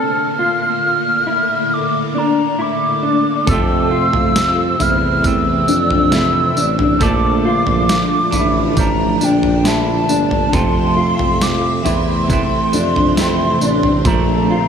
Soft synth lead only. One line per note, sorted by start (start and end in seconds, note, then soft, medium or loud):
0.00 1.75 F6 loud
1.73 2.20 D6 loud
2.18 2.63 A#5 medium
2.61 3.49 D6 medium
3.49 4.84 E6 loud
4.82 5.27 F6 loud
5.26 7.04 E6 loud
7.03 8.78 D6 loud
8.79 9.26 A#5 loud
9.24 9.69 G5 medium
9.67 10.56 A5 loud
10.54 11.44 C6 loud
11.42 11.86 D6 loud
11.86 14.08 C6 loud
14.07 14.68 A#5 loud